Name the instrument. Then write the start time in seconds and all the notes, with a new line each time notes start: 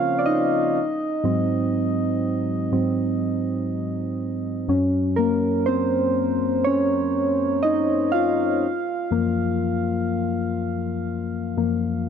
synth keys
Already playing: C#3 F3 C4 C#4 F4 C#5 F5
0.19 D5
0.26 D#4 D#5
1.24 G#2 F#3 C4
2.72 G#2 F#3 C4
4.68 F#2 F#3 C#4
5.16 A#3 A#4
5.66 C4 C5
6.64 C#4 C#5
7.63 D#4 D#5
8.12 F4 F5
9.11 F#2 F3 A#3
11.57 F#2 F3 A#3